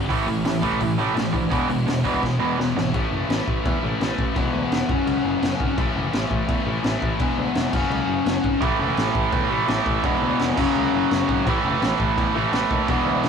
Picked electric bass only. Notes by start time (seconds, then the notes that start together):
Already playing: G#1
0.10 A1
0.27 A1
0.45 A1
0.63 A1
0.81 A1
0.98 A1
1.15 A1
1.34 D2
1.52 E1
1.69 E1
1.87 E1
2.05 E1
2.23 E1
2.39 E1
2.58 E1
2.75 G#1
2.94 A1
3.11 F#1
3.29 A1
3.47 A1
3.66 E2
3.83 A1
4.00 A1
4.18 A1
4.36 E1
4.53 D2
4.71 F1
4.89 F#1
5.06 C#2
5.24 F#1
5.43 F#1
5.60 G#1
5.78 A1
5.96 F#1
6.13 A1
6.31 A1
6.48 E2
6.67 A1
6.85 A1
7.02 A1
7.20 E1
7.38 D2
7.55 F1
7.73 F#1
7.90 C#2
8.08 F#1
8.26 F#1
8.44 G#1
8.62 A1
8.79 F#1
8.98 A1
9.15 A1
9.33 E2
9.50 A1
9.68 A1
9.86 A1
10.03 E1
10.22 D2
10.40 F1
10.58 F#1
10.76 C#2
10.94 F#1
11.11 F#1
11.28 G#1
11.47 A1
11.65 F#1
11.82 A1
12.00 A1
12.18 E2
12.35 A1
12.52 A1
12.71 D#2
12.88 E1
13.05 D2
13.23 E1